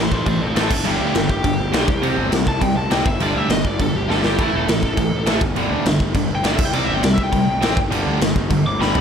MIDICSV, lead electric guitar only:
0, 0, Header, 1, 2, 480
1, 0, Start_track
1, 0, Tempo, 294551
1, 1387, Time_signature, 4, 2, 24, 8
1, 14681, End_track
2, 0, Start_track
2, 0, Title_t, "Lead electric guitar"
2, 0, Program_c, 0, 29
2, 0, Note_on_c, 0, 69, 79
2, 0, Note_on_c, 0, 72, 88
2, 191, Note_off_c, 0, 69, 0
2, 191, Note_off_c, 0, 72, 0
2, 206, Note_on_c, 0, 69, 64
2, 216, Note_on_c, 0, 72, 72
2, 423, Note_off_c, 0, 69, 0
2, 433, Note_off_c, 0, 72, 0
2, 447, Note_on_c, 0, 69, 62
2, 457, Note_on_c, 0, 72, 75
2, 661, Note_off_c, 0, 69, 0
2, 680, Note_on_c, 0, 60, 71
2, 692, Note_off_c, 0, 72, 0
2, 692, Note_on_c, 0, 69, 70
2, 891, Note_off_c, 0, 60, 0
2, 893, Note_off_c, 0, 69, 0
2, 906, Note_on_c, 0, 60, 65
2, 919, Note_on_c, 0, 69, 73
2, 1132, Note_off_c, 0, 60, 0
2, 1143, Note_off_c, 0, 69, 0
2, 1157, Note_on_c, 0, 64, 74
2, 1165, Note_on_c, 0, 69, 77
2, 1375, Note_off_c, 0, 64, 0
2, 1389, Note_off_c, 0, 69, 0
2, 1408, Note_on_c, 0, 64, 76
2, 1417, Note_on_c, 0, 67, 61
2, 1623, Note_off_c, 0, 64, 0
2, 1633, Note_off_c, 0, 67, 0
2, 1646, Note_on_c, 0, 64, 69
2, 1658, Note_on_c, 0, 67, 72
2, 1855, Note_off_c, 0, 64, 0
2, 1864, Note_off_c, 0, 67, 0
2, 1875, Note_on_c, 0, 64, 78
2, 1884, Note_on_c, 0, 67, 85
2, 2094, Note_off_c, 0, 64, 0
2, 2108, Note_off_c, 0, 67, 0
2, 2130, Note_on_c, 0, 67, 97
2, 3514, Note_off_c, 0, 67, 0
2, 4042, Note_on_c, 0, 81, 81
2, 4279, Note_off_c, 0, 81, 0
2, 4279, Note_on_c, 0, 79, 96
2, 4504, Note_off_c, 0, 79, 0
2, 4510, Note_on_c, 0, 81, 83
2, 4740, Note_off_c, 0, 81, 0
2, 4759, Note_on_c, 0, 79, 89
2, 4984, Note_off_c, 0, 79, 0
2, 4995, Note_on_c, 0, 76, 94
2, 5222, Note_off_c, 0, 76, 0
2, 5257, Note_on_c, 0, 74, 88
2, 5489, Note_off_c, 0, 74, 0
2, 5489, Note_on_c, 0, 76, 86
2, 5705, Note_off_c, 0, 76, 0
2, 5712, Note_on_c, 0, 75, 87
2, 5940, Note_off_c, 0, 75, 0
2, 5972, Note_on_c, 0, 74, 80
2, 6190, Note_off_c, 0, 74, 0
2, 6211, Note_on_c, 0, 69, 91
2, 6460, Note_off_c, 0, 69, 0
2, 6460, Note_on_c, 0, 67, 87
2, 6674, Note_off_c, 0, 67, 0
2, 6704, Note_on_c, 0, 69, 71
2, 6916, Note_off_c, 0, 69, 0
2, 6948, Note_on_c, 0, 67, 87
2, 7179, Note_off_c, 0, 67, 0
2, 7179, Note_on_c, 0, 64, 86
2, 7393, Note_off_c, 0, 64, 0
2, 7424, Note_on_c, 0, 69, 88
2, 8800, Note_off_c, 0, 69, 0
2, 10348, Note_on_c, 0, 79, 96
2, 10495, Note_on_c, 0, 74, 94
2, 10501, Note_off_c, 0, 79, 0
2, 10654, Note_off_c, 0, 74, 0
2, 10665, Note_on_c, 0, 76, 98
2, 10832, Note_off_c, 0, 76, 0
2, 10832, Note_on_c, 0, 79, 110
2, 10983, Note_off_c, 0, 79, 0
2, 10990, Note_on_c, 0, 74, 97
2, 11156, Note_off_c, 0, 74, 0
2, 11156, Note_on_c, 0, 76, 100
2, 11307, Note_off_c, 0, 76, 0
2, 11307, Note_on_c, 0, 79, 88
2, 11448, Note_on_c, 0, 74, 102
2, 11461, Note_off_c, 0, 79, 0
2, 11621, Note_off_c, 0, 74, 0
2, 11621, Note_on_c, 0, 76, 98
2, 11779, Note_off_c, 0, 76, 0
2, 11786, Note_on_c, 0, 79, 103
2, 12719, Note_off_c, 0, 79, 0
2, 14120, Note_on_c, 0, 86, 102
2, 14348, Note_off_c, 0, 86, 0
2, 14364, Note_on_c, 0, 83, 95
2, 14681, Note_off_c, 0, 83, 0
2, 14681, End_track
0, 0, End_of_file